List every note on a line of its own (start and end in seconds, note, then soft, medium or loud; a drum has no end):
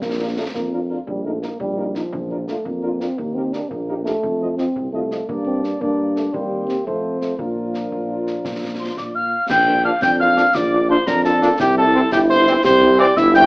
0.02 0.46 A#1 medium
0.02 0.35 A#3 medium
0.02 concert bass drum medium
0.02 snare medium
0.19 0.26 A#3 soft
0.19 0.26 D4 soft
0.19 0.26 F4 soft
0.19 0.27 A#4 medium
0.36 0.45 A3 medium
0.36 0.43 A#3 soft
0.36 0.43 D4 soft
0.36 0.43 F4 soft
0.36 0.44 A#4 soft
0.54 0.98 F2 medium
0.54 0.71 A#3 medium
0.54 concert bass drum medium
0.54 snare soft
0.72 0.78 A#3 soft
0.72 0.78 D4 soft
0.72 0.78 F4 soft
0.72 0.79 A#4 medium
0.90 0.96 A#3 soft
0.90 0.96 D4 soft
0.90 0.96 F4 soft
0.90 0.97 A#4 soft
1.07 1.51 A#1 medium
1.07 1.26 G3 medium
1.07 concert bass drum medium
1.24 1.42 A3 medium
1.24 1.31 A#3 soft
1.24 1.31 D#4 soft
1.24 1.32 A#4 soft
1.42 1.49 A#3 soft
1.42 1.59 A#3 medium
1.42 1.49 D#4 soft
1.42 1.49 A#4 soft
1.42 snare soft
1.60 2.04 A#1 medium
1.60 1.97 G3 medium
1.60 concert bass drum medium
1.77 1.84 A#3 medium
1.77 1.84 D#4 medium
1.77 1.85 A#4 medium
1.95 2.48 F3 medium
1.95 2.01 A#3 medium
1.95 2.01 D#4 soft
1.95 2.02 A#4 soft
1.95 snare soft
2.13 2.52 A#1 medium
2.13 concert bass drum medium
2.30 2.36 A#3 medium
2.30 2.36 D4 soft
2.30 2.36 F4 soft
2.30 2.37 A#4 medium
2.48 2.67 A3 medium
2.48 2.54 A#3 soft
2.48 2.54 D4 soft
2.48 2.54 F4 soft
2.48 2.54 A#4 soft
2.48 snare soft
2.65 3.09 F2 medium
2.65 3.02 A#3 medium
2.65 concert bass drum medium
2.83 2.89 A#3 soft
2.83 2.89 D4 medium
2.83 2.89 F4 soft
2.83 2.89 A#4 medium
3.00 3.07 A#3 soft
3.00 3.19 C4 medium
3.00 3.07 D4 soft
3.00 3.06 F4 soft
3.00 3.07 A#4 soft
3.00 snare soft
3.18 3.62 D#2 medium
3.18 3.36 A#3 medium
3.18 concert bass drum medium
3.35 3.42 A#3 soft
3.35 3.55 C4 medium
3.35 3.42 D#4 soft
3.35 3.42 G4 soft
3.35 3.42 A#4 medium
3.53 3.59 A#3 soft
3.53 3.71 D4 medium
3.53 3.59 D#4 soft
3.53 3.59 G4 soft
3.53 3.59 A#4 soft
3.53 snare soft
3.69 4.14 A#1 medium
3.69 4.04 A#3 medium
3.69 concert bass drum medium
3.88 3.95 A#3 soft
3.88 3.95 D#4 medium
3.88 3.94 G4 soft
3.88 3.94 A#4 medium
4.05 4.54 A3 medium
4.05 4.12 A#3 soft
4.05 4.12 D#4 soft
4.05 4.12 G4 soft
4.05 4.12 A#4 soft
4.05 snare soft
4.23 4.67 F2 medium
4.23 concert bass drum medium
4.41 4.47 F3 soft
4.41 4.47 C4 soft
4.41 4.47 F4 soft
4.41 4.48 D#5 soft
4.57 4.64 F3 soft
4.57 4.90 C4 medium
4.57 4.65 C4 soft
4.57 4.64 F4 soft
4.57 4.66 D#5 soft
4.57 snare soft
4.76 5.20 C2 medium
4.76 concert bass drum medium
4.93 5.00 F3 soft
4.93 5.29 A3 medium
4.93 5.00 C4 soft
4.93 5.00 F4 soft
4.93 5.00 D#5 soft
5.11 5.17 F3 soft
5.11 5.17 C4 soft
5.11 5.18 F4 soft
5.11 5.18 D#5 soft
5.11 snare soft
5.27 5.75 G2 medium
5.27 5.45 A#3 medium
5.27 5.78 A#3 medium
5.27 5.78 D4 medium
5.27 5.77 D5 medium
5.27 concert bass drum medium
5.46 5.66 C4 medium
5.64 5.82 D4 medium
5.64 snare soft
5.81 6.28 G2 medium
5.81 6.15 A#3 medium
5.81 6.30 A#3 soft
5.81 6.30 D4 soft
5.81 6.35 D5 medium
5.81 concert bass drum medium
6.16 6.24 A3 medium
6.16 snare soft
6.33 6.81 D#2 medium
6.33 6.66 G3 medium
6.33 6.83 A#3 medium
6.33 6.84 C4 medium
6.33 6.86 G4 medium
6.33 6.86 C5 soft
6.33 concert bass drum medium
6.67 6.76 C4 medium
6.67 snare soft
6.86 7.33 F2 soft
6.86 7.37 F3 soft
6.86 7.19 A3 medium
6.86 7.35 C4 soft
6.86 7.35 F4 soft
6.86 7.41 C5 soft
6.86 concert bass drum medium
7.21 7.37 A3 medium
7.21 snare soft
7.38 7.86 A#2 soft
7.38 9.28 F3 medium
7.38 8.92 A#3 medium
7.38 9.32 D4 soft
7.38 9.28 F4 medium
7.38 8.79 A#4 soft
7.38 concert bass drum medium
7.74 snare soft
7.92 8.38 A#2 soft
7.92 concert bass drum medium
8.27 snare soft
8.45 8.91 A#2 soft
8.45 concert bass drum medium
8.45 snare medium
8.79 8.99 C5 medium
8.79 8.96 C6 medium
8.97 9.36 A#2 soft
8.97 9.17 D5 medium
8.97 9.04 D6 medium
8.97 concert bass drum medium
8.97 snare soft
9.15 9.50 F5 medium
9.15 9.47 F6 medium
9.49 9.93 A#1 medium
9.49 9.83 G5 loud
9.49 9.82 G6 medium
9.49 concert bass drum medium
9.49 snare medium
9.49 crash medium
9.67 9.73 A#3 medium
9.67 9.73 D4 medium
9.67 9.73 F4 medium
9.84 9.91 F3 medium
9.84 9.90 A#3 medium
9.84 9.91 D4 medium
9.84 9.91 F4 medium
9.84 10.02 F5 medium
9.84 9.91 F6 medium
10.01 10.46 F2 medium
10.01 10.51 D4 medium
10.01 10.11 G5 loud
10.01 10.18 G6 medium
10.01 concert bass drum medium
10.01 snare medium
10.19 10.25 A#3 medium
10.19 10.25 D4 medium
10.19 10.25 F4 medium
10.19 10.58 F5 loud
10.19 10.56 F6 medium
10.36 10.43 F3 medium
10.36 10.43 A#3 medium
10.36 10.43 D4 medium
10.36 10.43 F4 medium
10.36 snare medium
10.54 10.98 A#1 medium
10.54 11.03 F4 medium
10.54 10.90 D5 loud
10.54 10.89 D6 medium
10.54 concert bass drum medium
10.54 snare medium
10.72 10.79 A#3 medium
10.72 10.78 D4 medium
10.72 10.78 F4 medium
10.89 10.95 F3 medium
10.89 10.96 A#3 medium
10.89 10.95 D4 medium
10.89 10.96 D4 medium
10.89 10.96 F4 medium
10.89 11.09 C5 loud
10.89 11.08 C6 medium
11.07 11.51 F2 medium
11.07 11.56 D4 medium
11.07 11.25 A#4 medium
11.07 11.24 A#5 medium
11.07 concert bass drum medium
11.07 snare medium
11.24 11.31 A#3 medium
11.24 11.31 D4 medium
11.24 11.31 F4 medium
11.24 11.58 A4 loud
11.24 11.57 A5 medium
11.24 snare medium
11.41 11.48 F3 medium
11.41 11.48 A#3 medium
11.41 11.48 D4 medium
11.41 11.49 F4 medium
11.41 snare medium
11.59 12.03 C2 medium
11.59 12.08 E4 medium
11.59 11.76 G4 loud
11.59 11.66 G5 medium
11.59 concert bass drum medium
11.59 snare medium
11.77 11.83 G3 medium
11.77 11.83 C4 medium
11.77 11.83 E4 medium
11.77 12.10 A4 loud
11.77 12.10 A5 medium
11.94 12.01 E3 medium
11.94 12.01 G3 medium
11.94 12.00 C4 medium
11.94 12.01 C4 medium
11.94 12.01 E4 medium
12.12 12.56 G1 medium
12.12 12.61 E4 loud
12.12 12.20 G4 loud
12.12 12.18 G5 loud
12.12 concert bass drum medium
12.12 snare medium
12.29 12.36 G3 medium
12.29 12.36 C4 medium
12.29 12.36 E4 medium
12.29 12.62 C5 loud
12.29 12.62 C6 medium
12.47 12.53 E3 medium
12.47 12.53 G3 medium
12.47 12.53 C4 medium
12.47 12.53 E4 medium
12.47 snare medium
12.64 13.08 C2 loud
12.64 13.13 G4 loud
12.64 12.98 C5 loud
12.64 12.97 C6 loud
12.64 concert bass drum medium
12.64 snare medium
12.82 12.88 G3 medium
12.82 12.88 C4 medium
12.82 12.88 E4 medium
12.98 13.05 E3 loud
12.98 13.06 G3 medium
12.98 13.05 C4 loud
12.98 13.06 C4 medium
12.98 13.06 E4 medium
12.98 13.19 D5 loud
12.98 13.06 D6 loud
13.17 13.46 G1 loud
13.17 13.46 E4 loud
13.17 13.35 E5 loud
13.17 13.33 E6 loud
13.17 concert bass drum medium
13.17 snare medium
13.34 13.41 G3 medium
13.34 13.41 C4 medium
13.34 13.41 E4 medium
13.34 13.46 G5 loud
13.34 13.46 G6 loud
13.34 snare medium